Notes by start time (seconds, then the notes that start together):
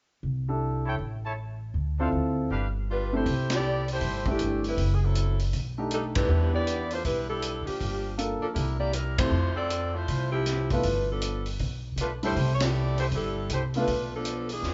0.23 C2
0.48 D4 E4 G4 A4
0.86 E4 A4 C#5 G5
0.98 A1
1.24 E4 A4 C#5 A5
1.74 D2
1.99 C4 D4 E4 F4 A4 C5 F5
2.12 D2
2.50 G1 D4 G4 B4 F5
2.90 G3 D4 F4 B4
3.13 C3 A3 D4 E4 G4 A4 C5
3.26 C2, kick, open hi-hat
3.50 A3, snare, ride
3.54 E4 G4 D5
3.88 open hi-hat
3.93 A3 E4 G4 C5
4.01 G1, kick, open hi-hat
4.26 A3 D4 E4 G4, kick
4.30 E3 A3 D4 G4
4.39 G1, closed hi-hat
4.64 G3 C4, open hi-hat
4.68 E4 B4
4.77 F#1, kick, open hi-hat
4.94 G#4
5.04 F#3 C4 E4 A4
5.15 closed hi-hat
5.39 open hi-hat
5.53 B1, kick, open hi-hat
5.78 A3 D4 D#4 G4
5.91 G3 D4 D#4 A4, closed hi-hat
6.15 G3 D4 E4 B4, kick, ride
6.28 E2 B3 D4 E4 G4
6.53 B3 E4 G4 D5
6.67 closed hi-hat
6.91 A3 D4 F4 C5, open hi-hat
7.04 B1 G3 D4 E4 B4, kick, open hi-hat
7.29 G3 D4 E4 A4
7.42 closed hi-hat
7.65 F3 A#3 D4 G4, muted upright bass stroke, open hi-hat
7.81 G1, kick, open hi-hat
8.18 A#3 D4 F4 A4, closed hi-hat
8.41 F3 A#3 D4 A4, muted upright bass stroke
8.53 C2 G3 D4 E4 A#4, kick, open hi-hat
8.79 A#3 E4 G4 D5
8.93 G3 D4 E4 A#4, closed hi-hat
9.18 A3 C4 E4 F4 G4 C5, kick, ride
9.30 F2
9.56 C4 F4 A4 D5
9.70 closed hi-hat
9.94 A3 E4 F4 C5
10.08 C2, kick, open hi-hat
10.32 F3 C4 E4 G4
10.46 snare, closed hi-hat
10.70 A3 B3 D4 E4 F4 B4, kick, open hi-hat
10.83 G1, kick, open hi-hat
11.11 F3 B3 D4 A4
11.22 closed hi-hat
11.46 open hi-hat
11.59 B1, kick, open hi-hat
11.96 B1 D4, closed hi-hat
12.01 A3 F4 B4
12.23 G3 A3 D4 E4 G4 C5, open hi-hat
12.36 C2, kick, open hi-hat
12.54 C#5
12.60 A3 E4 G4 D5, snare, ride
12.98 A3 E4 G4 C5, open hi-hat
13.11 G1 G3 D4 E4 A4, kick, open hi-hat
13.49 C2 A3 E4 G4 C5, closed hi-hat
13.74 A3 B3 D4 F4, open hi-hat
13.78 A3 D4 F4 B4
13.87 B1, kick, open hi-hat
14.15 F3 B3 D4 A4
14.25 closed hi-hat
14.49 E3 B3 D4 G#4, open hi-hat
14.63 E2, snare